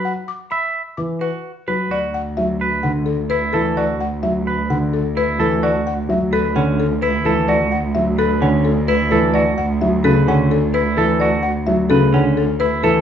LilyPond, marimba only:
\new Staff \with { instrumentName = "Marimba" } { \time 4/4 \key b \phrygian \tempo 4 = 129 fis''8 d'''8 b''8 r8 d'''8 b'8 r8 b'8 | \key d \major d''8 fis''8 e''8 r8 fis''8 a'8 b'8 a'8 | d''8 fis''8 e''8 r8 fis''8 a'8 b'8 a'8 | d''8 fis''8 e''8 a'8 fis''8 a'8 b'8 a'8 |
d''8 fis''8 e''8 a'8 fis''8 a'8 b'8 a'8 | d''8 fis''8 e''8 a'8 fis''8 a'8 b'8 a'8 | d''8 fis''8 e''8 a'8 fis''8 a'8 b'8 a'8 | }